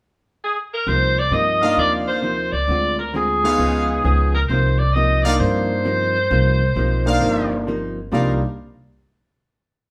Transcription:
0.45 G#4
0.74 A#4
0.87 C2 C3 F3 A#3 D#4 C5
1.19 D5
1.31 G2 C3 F3 A#3 D#4 D#5
1.62 A#3 D4 D#4 F4 A#4 D5 F5
1.77 D#2 C3 F3 A#3 D#4 D5
2.08 C5
2.22 C3 F3 A#3 D#4
2.53 C#2 D5
2.68 D2 D3 G#3 C4 F4
2.99 A#4
3.13 D3 G#3 C4 F4 G#4
3.44 G#3 B3 D#4 F4 B4 C#5 F5
3.58 C#2 C#3 F3 B3 D#4
4.04 C#2 C#3 F3 B3 D#4 G#4
4.35 A#4
4.49 C2 C3 F3 A#3 C5
4.53 D#4
4.79 D5
4.93 C3 F3 A#3 D#5
4.98 D#4
5.23 A#3 D4 D#4 A#4 D5 F5
5.27 D#4 F4
5.40 G2 C3 F3 A#3 D#4 C5
5.85 C3 F3 A#3 D#4
6.30 C2 C3 F3 A#3 D#4
6.76 B1 C3 F3 A#3 D#4
7.05 A#3 D4 D#4 F4 A#4 D5 F5
7.20 G1 C3 F3 A#3 D#4
7.67 C3 F3 A#3 D#4
8.12 C2 C3 F3 G3 A#3 D4 D#4 F4 A#4 D5 F5

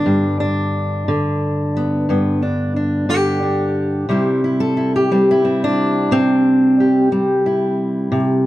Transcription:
Already playing: D3 D4
0.06 G2
0.40 D4
1.08 D3
1.77 B3
2.09 G2 B3
2.42 D4
2.76 D4
3.09 D3 G4
3.43 D4
4.09 C3 G3 C4 E4
4.44 E4
4.60 A4
4.77 E4
4.96 G4
5.11 G3 C4
5.31 E4
5.45 C4
5.64 D4
6.11 C3 C4
6.80 G4
7.12 G3 C4
7.46 E4
8.12 C3

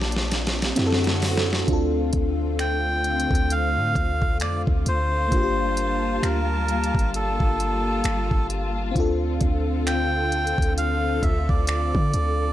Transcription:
Already playing: A#1 G3 A#3 C4 D4 F4 G4
0.02 snare
0.12 closed hi-hat
0.16 snare
0.31 snare, closed hi-hat
0.47 snare, closed hi-hat
0.62 snare, closed hi-hat
0.76 F#2 D3 A3 C4 E4 F#4, snare, closed hi-hat
0.80 G4
0.87 A4
0.92 snare
1.04 snare, closed hi-hat
1.22 snare, open hi-hat
1.37 snare
1.53 snare
1.64 D2 C4 D4, kick, closed hi-hat
1.69 D3 A3 C4 F4
1.73 A4
2.13 D2, kick, closed hi-hat
2.59 G5, finger snap, closed hi-hat
3.04 closed hi-hat
3.20 closed hi-hat
3.31 D2, kick
3.35 closed hi-hat
3.50 F5, closed hi-hat
3.76 A2
3.95 D2, kick, closed hi-hat
4.22 kick
4.40 F2 D5, finger snap, closed hi-hat
4.67 D2, kick
4.86 D2 C5, closed hi-hat
5.28 A#3 D4, kick
5.32 G1 G3 A#3 F4 A5, closed hi-hat
5.36 G4
5.43 G4
5.77 closed hi-hat
6.23 D2 A#4, finger snap, closed hi-hat
6.68 closed hi-hat
6.84 closed hi-hat
6.95 G1, kick
6.99 closed hi-hat
7.14 A4, closed hi-hat
7.40 G1, kick
7.60 closed hi-hat
8.04 G1, finger snap, closed hi-hat
8.31 G1, kick
8.50 closed hi-hat
8.91 D3 C4 D4
8.95 D2 F4 A4, kick, closed hi-hat
9.00 A4
9.41 D2, kick, closed hi-hat
9.87 G5, finger snap, closed hi-hat
10.32 closed hi-hat
10.47 closed hi-hat
10.58 D2, kick
10.62 closed hi-hat
10.78 F5, closed hi-hat
11.23 D2 E5, kick, closed hi-hat
11.49 D2 D5, kick
11.67 D5, finger snap, closed hi-hat
11.95 D3, kick
12.14 D2, closed hi-hat

